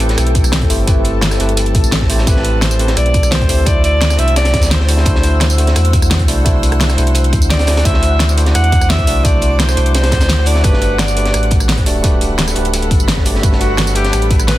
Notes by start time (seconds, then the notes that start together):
Already playing: A1 A4 C5 G5
0.00 A3 C4 E4 G4 B4, closed hi-hat
0.09 snare, closed hi-hat
0.18 B1 A5, cross-stick, closed hi-hat, tambourine
0.27 closed hi-hat
0.35 kick, closed hi-hat, tambourine
0.44 cross-stick, tambourine
0.52 snare, closed hi-hat, tambourine
0.61 kick, closed hi-hat
0.70 G1 A3 C4 E4 G4 C5, closed hi-hat, open hi-hat, tambourine
0.87 A3 C4 E4 G4 B4, kick, closed hi-hat, tambourine
1.05 closed hi-hat
1.21 snare, closed hi-hat, tambourine
1.31 cross-stick, snare, tambourine
1.39 G1 A3 C4 E4 G4 B4, closed hi-hat
1.49 closed hi-hat
1.57 closed hi-hat, tambourine
1.66 closed hi-hat
1.75 C2, kick, closed hi-hat, tambourine
1.84 A1, tambourine
1.92 snare, closed hi-hat, tambourine
2.01 kick, snare
2.09 A3 C4 E4 G4 C5, closed hi-hat, open hi-hat, tambourine
2.18 snare
2.26 A1 A3 C4 E4 G4 B4, kick, closed hi-hat, tambourine
2.36 snare
2.44 closed hi-hat
2.62 C5, snare, closed hi-hat, tambourine
2.71 tambourine
2.78 A3 C4 E4 G4 B4, closed hi-hat
2.87 snare, closed hi-hat
2.97 B1 D5, cross-stick, closed hi-hat, tambourine
3.06 closed hi-hat
3.14 kick, closed hi-hat, tambourine
3.23 cross-stick, tambourine
3.31 C5, snare, closed hi-hat, tambourine
3.41 kick, closed hi-hat
3.49 D2 A3 C4 E4 G4 C5, closed hi-hat, open hi-hat, tambourine
3.65 A3 D4 E4 F#4 C5 D5 F#5 E6, kick, closed hi-hat, tambourine
3.84 D5, closed hi-hat
4.01 snare, closed hi-hat, tambourine
4.10 cross-stick, snare, tambourine
4.18 C2 A3 D4 E4 F#4 C5 E5, closed hi-hat
4.28 closed hi-hat
4.36 D5, snare, closed hi-hat, tambourine
4.45 snare, closed hi-hat
4.54 F#2, kick, snare, closed hi-hat, tambourine
4.61 D2, snare, closed hi-hat, tambourine
4.71 C5, snare, closed hi-hat
4.80 snare
4.88 A3 D4 E4 F#4 C5 D5, closed hi-hat, open hi-hat, tambourine
4.97 snare
5.05 D2 A3 D4 E4 F#4 C5, kick, closed hi-hat, tambourine
5.15 snare
5.23 closed hi-hat
5.41 snare, closed hi-hat, tambourine
5.50 tambourine
5.57 A3 D4 E4 F#4 C5, closed hi-hat
5.67 snare, closed hi-hat
5.76 E2, cross-stick, closed hi-hat, tambourine
5.85 closed hi-hat
5.93 kick, closed hi-hat, tambourine
6.02 cross-stick, tambourine
6.11 snare, closed hi-hat, tambourine
6.19 kick, closed hi-hat
6.28 C2 A3 D4 E4 F#4 D5, closed hi-hat, open hi-hat, tambourine
6.45 A3 D4 E4 F#4 C5, kick, closed hi-hat, tambourine
6.63 closed hi-hat, tambourine
6.72 cross-stick, closed hi-hat
6.81 snare, closed hi-hat, tambourine
6.89 cross-stick, snare, tambourine
6.97 C2 A3 D4 E4 F#4 C5, closed hi-hat, tambourine
7.07 closed hi-hat
7.15 D6, closed hi-hat, tambourine
7.24 closed hi-hat
7.33 F#2, kick, closed hi-hat, tambourine
7.42 D2, tambourine
7.50 D5, snare, closed hi-hat, tambourine
7.59 snare, closed hi-hat
7.67 D2 A3 D4 E4 F#4 D5, cross-stick, snare, closed hi-hat, open hi-hat, tambourine
7.77 snare, closed hi-hat
7.84 D2 A3 D4 E4 F#4 C5 E5, kick, closed hi-hat, tambourine
7.94 snare
8.03 closed hi-hat
8.20 snare, closed hi-hat, tambourine
8.29 tambourine
8.36 A3 D4 E4 F#4 C5, closed hi-hat
8.46 snare, closed hi-hat
8.55 E2 F#5, cross-stick, closed hi-hat, tambourine
8.64 closed hi-hat
8.72 kick, closed hi-hat, tambourine
8.81 cross-stick, tambourine
8.90 E5, snare, closed hi-hat, tambourine
8.98 kick, closed hi-hat
9.07 C2 A3 D4 E4 F#4 D5, closed hi-hat, open hi-hat, tambourine
9.24 A3 D4 E4 F#4 C5 D5, kick, closed hi-hat, tambourine
9.42 closed hi-hat
9.60 C5, snare, closed hi-hat, tambourine
9.69 cross-stick, snare, tambourine
9.76 C2 A3 D4 E4 F#4 C5, closed hi-hat
9.86 closed hi-hat
9.95 C5, snare, closed hi-hat, tambourine
10.03 snare, closed hi-hat
10.12 F#2, kick, snare, closed hi-hat, tambourine
10.20 D2, snare, closed hi-hat, tambourine
10.29 snare, closed hi-hat, tambourine
10.37 snare
10.46 A3 D4 E4 F#4 D5, closed hi-hat, open hi-hat, tambourine
10.55 snare
10.63 G1 A3 D4 F#4 G4 A4 B4 B5, kick, closed hi-hat, tambourine
10.73 snare
10.82 closed hi-hat
10.99 D5, snare, closed hi-hat, tambourine
11.08 tambourine
11.15 A3 D4 F#4 G4 B4, closed hi-hat
11.25 snare, closed hi-hat
11.34 A1, cross-stick, closed hi-hat, tambourine
11.43 closed hi-hat
11.51 kick, closed hi-hat, tambourine
11.60 cross-stick, tambourine
11.69 snare, closed hi-hat, tambourine
11.77 kick, closed hi-hat
11.86 D1 A3 D4 F#4 G4 D5, closed hi-hat, open hi-hat, tambourine
12.03 A3 D4 F#4 G4 B4, kick, closed hi-hat, tambourine
12.21 closed hi-hat
12.38 snare, closed hi-hat, tambourine
12.47 cross-stick, snare, tambourine
12.55 D1 A3 D4 F#4 G4 B4, closed hi-hat
12.65 closed hi-hat
12.74 closed hi-hat, tambourine
12.82 closed hi-hat
12.91 B1, kick, closed hi-hat, tambourine
13.00 G1, tambourine
13.08 snare, closed hi-hat, tambourine
13.17 kick, snare
13.25 A3 D4 F#4 G4 D5, closed hi-hat, open hi-hat, tambourine
13.35 snare
13.42 G1 G3 A3 D4 F#4 B4, kick, closed hi-hat, tambourine
13.52 snare
13.61 F#4, closed hi-hat
13.78 snare, closed hi-hat, tambourine
13.87 tambourine
13.95 A3 D4 G4 B4 F#5, closed hi-hat
14.05 snare, closed hi-hat
14.13 A1, cross-stick, closed hi-hat, tambourine
14.22 closed hi-hat
14.31 kick, closed hi-hat, tambourine
14.39 cross-stick, tambourine
14.48 B4, snare, closed hi-hat, tambourine